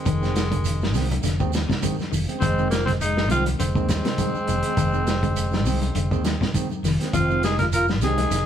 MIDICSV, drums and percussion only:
0, 0, Header, 1, 3, 480
1, 0, Start_track
1, 0, Tempo, 589971
1, 47, Time_signature, 4, 2, 24, 8
1, 6881, End_track
2, 0, Start_track
2, 0, Title_t, "Shekere"
2, 46, Note_on_c, 9, 82, 78
2, 127, Note_off_c, 9, 82, 0
2, 185, Note_on_c, 9, 82, 31
2, 266, Note_off_c, 9, 82, 0
2, 294, Note_on_c, 9, 82, 75
2, 375, Note_off_c, 9, 82, 0
2, 423, Note_on_c, 9, 82, 33
2, 505, Note_off_c, 9, 82, 0
2, 527, Note_on_c, 9, 82, 99
2, 608, Note_off_c, 9, 82, 0
2, 662, Note_on_c, 9, 82, 26
2, 743, Note_off_c, 9, 82, 0
2, 763, Note_on_c, 9, 82, 67
2, 845, Note_off_c, 9, 82, 0
2, 898, Note_on_c, 9, 82, 31
2, 979, Note_off_c, 9, 82, 0
2, 1002, Note_on_c, 9, 82, 89
2, 1083, Note_off_c, 9, 82, 0
2, 1134, Note_on_c, 9, 82, 33
2, 1216, Note_off_c, 9, 82, 0
2, 1245, Note_on_c, 9, 82, 76
2, 1326, Note_off_c, 9, 82, 0
2, 1382, Note_on_c, 9, 82, 25
2, 1464, Note_off_c, 9, 82, 0
2, 1486, Note_on_c, 9, 82, 100
2, 1567, Note_off_c, 9, 82, 0
2, 1619, Note_on_c, 9, 82, 29
2, 1700, Note_off_c, 9, 82, 0
2, 1732, Note_on_c, 9, 82, 80
2, 1814, Note_off_c, 9, 82, 0
2, 1863, Note_on_c, 9, 82, 30
2, 1945, Note_off_c, 9, 82, 0
2, 1965, Note_on_c, 9, 82, 75
2, 2046, Note_off_c, 9, 82, 0
2, 2103, Note_on_c, 9, 82, 31
2, 2185, Note_off_c, 9, 82, 0
2, 2208, Note_on_c, 9, 82, 78
2, 2290, Note_off_c, 9, 82, 0
2, 2339, Note_on_c, 9, 82, 32
2, 2420, Note_off_c, 9, 82, 0
2, 2450, Note_on_c, 9, 82, 87
2, 2532, Note_off_c, 9, 82, 0
2, 2588, Note_on_c, 9, 82, 25
2, 2669, Note_off_c, 9, 82, 0
2, 2693, Note_on_c, 9, 82, 77
2, 2774, Note_off_c, 9, 82, 0
2, 2821, Note_on_c, 9, 82, 29
2, 2903, Note_off_c, 9, 82, 0
2, 2931, Note_on_c, 9, 82, 78
2, 3012, Note_off_c, 9, 82, 0
2, 3060, Note_on_c, 9, 82, 32
2, 3142, Note_off_c, 9, 82, 0
2, 3170, Note_on_c, 9, 82, 74
2, 3252, Note_off_c, 9, 82, 0
2, 3295, Note_on_c, 9, 82, 29
2, 3377, Note_off_c, 9, 82, 0
2, 3408, Note_on_c, 9, 82, 87
2, 3489, Note_off_c, 9, 82, 0
2, 3538, Note_on_c, 9, 82, 29
2, 3619, Note_off_c, 9, 82, 0
2, 3651, Note_on_c, 9, 82, 70
2, 3733, Note_off_c, 9, 82, 0
2, 3779, Note_on_c, 9, 82, 31
2, 3860, Note_off_c, 9, 82, 0
2, 3888, Note_on_c, 9, 82, 78
2, 3969, Note_off_c, 9, 82, 0
2, 4014, Note_on_c, 9, 82, 31
2, 4096, Note_off_c, 9, 82, 0
2, 4127, Note_on_c, 9, 82, 68
2, 4209, Note_off_c, 9, 82, 0
2, 4257, Note_on_c, 9, 82, 32
2, 4338, Note_off_c, 9, 82, 0
2, 4365, Note_on_c, 9, 82, 84
2, 4446, Note_off_c, 9, 82, 0
2, 4495, Note_on_c, 9, 82, 27
2, 4576, Note_off_c, 9, 82, 0
2, 4603, Note_on_c, 9, 82, 71
2, 4685, Note_off_c, 9, 82, 0
2, 4736, Note_on_c, 9, 82, 28
2, 4817, Note_off_c, 9, 82, 0
2, 4846, Note_on_c, 9, 82, 78
2, 4927, Note_off_c, 9, 82, 0
2, 4980, Note_on_c, 9, 82, 30
2, 5062, Note_off_c, 9, 82, 0
2, 5085, Note_on_c, 9, 82, 70
2, 5166, Note_off_c, 9, 82, 0
2, 5224, Note_on_c, 9, 82, 31
2, 5306, Note_off_c, 9, 82, 0
2, 5331, Note_on_c, 9, 82, 86
2, 5412, Note_off_c, 9, 82, 0
2, 5463, Note_on_c, 9, 82, 27
2, 5545, Note_off_c, 9, 82, 0
2, 5573, Note_on_c, 9, 82, 73
2, 5654, Note_off_c, 9, 82, 0
2, 5707, Note_on_c, 9, 82, 33
2, 5789, Note_off_c, 9, 82, 0
2, 5810, Note_on_c, 9, 82, 85
2, 5891, Note_off_c, 9, 82, 0
2, 5943, Note_on_c, 9, 82, 30
2, 6024, Note_off_c, 9, 82, 0
2, 6049, Note_on_c, 9, 82, 73
2, 6130, Note_off_c, 9, 82, 0
2, 6179, Note_on_c, 9, 82, 33
2, 6260, Note_off_c, 9, 82, 0
2, 6284, Note_on_c, 9, 82, 97
2, 6365, Note_off_c, 9, 82, 0
2, 6412, Note_on_c, 9, 82, 32
2, 6494, Note_off_c, 9, 82, 0
2, 6520, Note_on_c, 9, 82, 69
2, 6601, Note_off_c, 9, 82, 0
2, 6658, Note_on_c, 9, 82, 27
2, 6739, Note_off_c, 9, 82, 0
2, 6763, Note_on_c, 9, 82, 87
2, 6844, Note_off_c, 9, 82, 0
2, 6881, End_track
3, 0, Start_track
3, 0, Title_t, "Drums"
3, 50, Note_on_c, 9, 36, 93
3, 51, Note_on_c, 9, 42, 71
3, 131, Note_off_c, 9, 36, 0
3, 132, Note_off_c, 9, 42, 0
3, 194, Note_on_c, 9, 38, 30
3, 276, Note_off_c, 9, 38, 0
3, 290, Note_on_c, 9, 42, 53
3, 298, Note_on_c, 9, 38, 81
3, 371, Note_off_c, 9, 42, 0
3, 379, Note_off_c, 9, 38, 0
3, 421, Note_on_c, 9, 36, 79
3, 421, Note_on_c, 9, 42, 59
3, 502, Note_off_c, 9, 36, 0
3, 502, Note_off_c, 9, 42, 0
3, 535, Note_on_c, 9, 42, 67
3, 547, Note_on_c, 9, 63, 38
3, 547, Note_on_c, 9, 64, 68
3, 616, Note_off_c, 9, 42, 0
3, 628, Note_off_c, 9, 63, 0
3, 628, Note_off_c, 9, 64, 0
3, 666, Note_on_c, 9, 63, 81
3, 677, Note_on_c, 9, 38, 60
3, 747, Note_off_c, 9, 63, 0
3, 759, Note_off_c, 9, 38, 0
3, 774, Note_on_c, 9, 64, 80
3, 775, Note_on_c, 9, 46, 68
3, 783, Note_on_c, 9, 38, 26
3, 855, Note_off_c, 9, 64, 0
3, 856, Note_off_c, 9, 46, 0
3, 865, Note_off_c, 9, 38, 0
3, 906, Note_on_c, 9, 63, 107
3, 909, Note_on_c, 9, 42, 51
3, 988, Note_off_c, 9, 63, 0
3, 990, Note_off_c, 9, 42, 0
3, 1014, Note_on_c, 9, 63, 37
3, 1017, Note_on_c, 9, 42, 68
3, 1025, Note_on_c, 9, 38, 29
3, 1096, Note_off_c, 9, 63, 0
3, 1098, Note_off_c, 9, 42, 0
3, 1106, Note_off_c, 9, 38, 0
3, 1141, Note_on_c, 9, 36, 75
3, 1223, Note_off_c, 9, 36, 0
3, 1253, Note_on_c, 9, 42, 50
3, 1255, Note_on_c, 9, 63, 89
3, 1261, Note_on_c, 9, 38, 70
3, 1334, Note_off_c, 9, 42, 0
3, 1336, Note_off_c, 9, 63, 0
3, 1343, Note_off_c, 9, 38, 0
3, 1380, Note_on_c, 9, 36, 59
3, 1391, Note_on_c, 9, 38, 64
3, 1461, Note_off_c, 9, 36, 0
3, 1473, Note_off_c, 9, 38, 0
3, 1489, Note_on_c, 9, 36, 76
3, 1492, Note_on_c, 9, 63, 78
3, 1492, Note_on_c, 9, 64, 70
3, 1493, Note_on_c, 9, 42, 78
3, 1571, Note_off_c, 9, 36, 0
3, 1573, Note_off_c, 9, 63, 0
3, 1573, Note_off_c, 9, 64, 0
3, 1574, Note_off_c, 9, 42, 0
3, 1623, Note_on_c, 9, 63, 74
3, 1634, Note_on_c, 9, 38, 27
3, 1705, Note_off_c, 9, 63, 0
3, 1715, Note_off_c, 9, 38, 0
3, 1735, Note_on_c, 9, 46, 57
3, 1735, Note_on_c, 9, 64, 88
3, 1816, Note_off_c, 9, 46, 0
3, 1816, Note_off_c, 9, 64, 0
3, 1864, Note_on_c, 9, 42, 54
3, 1946, Note_off_c, 9, 42, 0
3, 1969, Note_on_c, 9, 36, 105
3, 1971, Note_on_c, 9, 42, 76
3, 2051, Note_off_c, 9, 36, 0
3, 2053, Note_off_c, 9, 42, 0
3, 2207, Note_on_c, 9, 42, 57
3, 2216, Note_on_c, 9, 38, 77
3, 2289, Note_off_c, 9, 42, 0
3, 2297, Note_off_c, 9, 38, 0
3, 2339, Note_on_c, 9, 36, 78
3, 2343, Note_on_c, 9, 42, 62
3, 2351, Note_on_c, 9, 38, 29
3, 2420, Note_off_c, 9, 36, 0
3, 2424, Note_off_c, 9, 42, 0
3, 2432, Note_off_c, 9, 38, 0
3, 2450, Note_on_c, 9, 42, 72
3, 2451, Note_on_c, 9, 63, 36
3, 2532, Note_off_c, 9, 42, 0
3, 2533, Note_off_c, 9, 63, 0
3, 2578, Note_on_c, 9, 63, 82
3, 2581, Note_on_c, 9, 38, 62
3, 2659, Note_off_c, 9, 63, 0
3, 2662, Note_off_c, 9, 38, 0
3, 2682, Note_on_c, 9, 42, 55
3, 2691, Note_on_c, 9, 63, 70
3, 2691, Note_on_c, 9, 64, 80
3, 2764, Note_off_c, 9, 42, 0
3, 2772, Note_off_c, 9, 63, 0
3, 2772, Note_off_c, 9, 64, 0
3, 2815, Note_on_c, 9, 42, 53
3, 2819, Note_on_c, 9, 63, 101
3, 2897, Note_off_c, 9, 42, 0
3, 2900, Note_off_c, 9, 63, 0
3, 2925, Note_on_c, 9, 42, 79
3, 2931, Note_on_c, 9, 63, 42
3, 3007, Note_off_c, 9, 42, 0
3, 3013, Note_off_c, 9, 63, 0
3, 3055, Note_on_c, 9, 36, 75
3, 3136, Note_off_c, 9, 36, 0
3, 3161, Note_on_c, 9, 42, 54
3, 3164, Note_on_c, 9, 36, 63
3, 3166, Note_on_c, 9, 63, 100
3, 3169, Note_on_c, 9, 38, 68
3, 3242, Note_off_c, 9, 42, 0
3, 3245, Note_off_c, 9, 36, 0
3, 3247, Note_off_c, 9, 63, 0
3, 3250, Note_off_c, 9, 38, 0
3, 3294, Note_on_c, 9, 42, 46
3, 3302, Note_on_c, 9, 38, 61
3, 3375, Note_off_c, 9, 42, 0
3, 3383, Note_off_c, 9, 38, 0
3, 3401, Note_on_c, 9, 42, 69
3, 3403, Note_on_c, 9, 36, 62
3, 3404, Note_on_c, 9, 63, 80
3, 3482, Note_off_c, 9, 42, 0
3, 3485, Note_off_c, 9, 36, 0
3, 3485, Note_off_c, 9, 63, 0
3, 3536, Note_on_c, 9, 63, 74
3, 3617, Note_off_c, 9, 63, 0
3, 3640, Note_on_c, 9, 42, 50
3, 3646, Note_on_c, 9, 64, 87
3, 3722, Note_off_c, 9, 42, 0
3, 3727, Note_off_c, 9, 64, 0
3, 3764, Note_on_c, 9, 42, 59
3, 3846, Note_off_c, 9, 42, 0
3, 3880, Note_on_c, 9, 42, 66
3, 3882, Note_on_c, 9, 36, 96
3, 3962, Note_off_c, 9, 42, 0
3, 3964, Note_off_c, 9, 36, 0
3, 4123, Note_on_c, 9, 42, 50
3, 4131, Note_on_c, 9, 38, 73
3, 4205, Note_off_c, 9, 42, 0
3, 4213, Note_off_c, 9, 38, 0
3, 4255, Note_on_c, 9, 36, 78
3, 4255, Note_on_c, 9, 42, 56
3, 4336, Note_off_c, 9, 36, 0
3, 4336, Note_off_c, 9, 42, 0
3, 4363, Note_on_c, 9, 63, 36
3, 4364, Note_on_c, 9, 42, 68
3, 4444, Note_off_c, 9, 63, 0
3, 4445, Note_off_c, 9, 42, 0
3, 4488, Note_on_c, 9, 63, 87
3, 4502, Note_on_c, 9, 38, 52
3, 4569, Note_off_c, 9, 63, 0
3, 4584, Note_off_c, 9, 38, 0
3, 4600, Note_on_c, 9, 64, 84
3, 4606, Note_on_c, 9, 46, 63
3, 4681, Note_off_c, 9, 64, 0
3, 4688, Note_off_c, 9, 46, 0
3, 4732, Note_on_c, 9, 63, 93
3, 4740, Note_on_c, 9, 42, 52
3, 4813, Note_off_c, 9, 63, 0
3, 4821, Note_off_c, 9, 42, 0
3, 4840, Note_on_c, 9, 42, 55
3, 4844, Note_on_c, 9, 63, 38
3, 4922, Note_off_c, 9, 42, 0
3, 4925, Note_off_c, 9, 63, 0
3, 4974, Note_on_c, 9, 36, 75
3, 5055, Note_off_c, 9, 36, 0
3, 5082, Note_on_c, 9, 42, 46
3, 5082, Note_on_c, 9, 63, 99
3, 5091, Note_on_c, 9, 38, 69
3, 5163, Note_off_c, 9, 63, 0
3, 5164, Note_off_c, 9, 42, 0
3, 5172, Note_off_c, 9, 38, 0
3, 5215, Note_on_c, 9, 36, 62
3, 5225, Note_on_c, 9, 38, 58
3, 5297, Note_off_c, 9, 36, 0
3, 5307, Note_off_c, 9, 38, 0
3, 5319, Note_on_c, 9, 63, 83
3, 5319, Note_on_c, 9, 64, 67
3, 5325, Note_on_c, 9, 36, 67
3, 5325, Note_on_c, 9, 42, 74
3, 5401, Note_off_c, 9, 63, 0
3, 5401, Note_off_c, 9, 64, 0
3, 5406, Note_off_c, 9, 36, 0
3, 5406, Note_off_c, 9, 42, 0
3, 5452, Note_on_c, 9, 63, 80
3, 5533, Note_off_c, 9, 63, 0
3, 5565, Note_on_c, 9, 46, 58
3, 5565, Note_on_c, 9, 64, 96
3, 5574, Note_on_c, 9, 38, 26
3, 5646, Note_off_c, 9, 64, 0
3, 5647, Note_off_c, 9, 46, 0
3, 5655, Note_off_c, 9, 38, 0
3, 5700, Note_on_c, 9, 42, 48
3, 5708, Note_on_c, 9, 38, 29
3, 5781, Note_off_c, 9, 42, 0
3, 5789, Note_off_c, 9, 38, 0
3, 5804, Note_on_c, 9, 42, 70
3, 5805, Note_on_c, 9, 36, 101
3, 5885, Note_off_c, 9, 42, 0
3, 5886, Note_off_c, 9, 36, 0
3, 6045, Note_on_c, 9, 42, 54
3, 6053, Note_on_c, 9, 38, 71
3, 6127, Note_off_c, 9, 42, 0
3, 6135, Note_off_c, 9, 38, 0
3, 6173, Note_on_c, 9, 42, 57
3, 6175, Note_on_c, 9, 36, 75
3, 6182, Note_on_c, 9, 38, 30
3, 6255, Note_off_c, 9, 42, 0
3, 6256, Note_off_c, 9, 36, 0
3, 6263, Note_off_c, 9, 38, 0
3, 6287, Note_on_c, 9, 42, 79
3, 6288, Note_on_c, 9, 63, 31
3, 6368, Note_off_c, 9, 42, 0
3, 6370, Note_off_c, 9, 63, 0
3, 6413, Note_on_c, 9, 63, 82
3, 6423, Note_on_c, 9, 38, 56
3, 6495, Note_off_c, 9, 63, 0
3, 6504, Note_off_c, 9, 38, 0
3, 6524, Note_on_c, 9, 63, 71
3, 6524, Note_on_c, 9, 64, 85
3, 6527, Note_on_c, 9, 42, 55
3, 6535, Note_on_c, 9, 38, 27
3, 6606, Note_off_c, 9, 63, 0
3, 6606, Note_off_c, 9, 64, 0
3, 6608, Note_off_c, 9, 42, 0
3, 6616, Note_off_c, 9, 38, 0
3, 6654, Note_on_c, 9, 63, 105
3, 6656, Note_on_c, 9, 42, 52
3, 6735, Note_off_c, 9, 63, 0
3, 6737, Note_off_c, 9, 42, 0
3, 6763, Note_on_c, 9, 42, 73
3, 6767, Note_on_c, 9, 63, 36
3, 6771, Note_on_c, 9, 38, 29
3, 6844, Note_off_c, 9, 42, 0
3, 6848, Note_off_c, 9, 63, 0
3, 6852, Note_off_c, 9, 38, 0
3, 6881, End_track
0, 0, End_of_file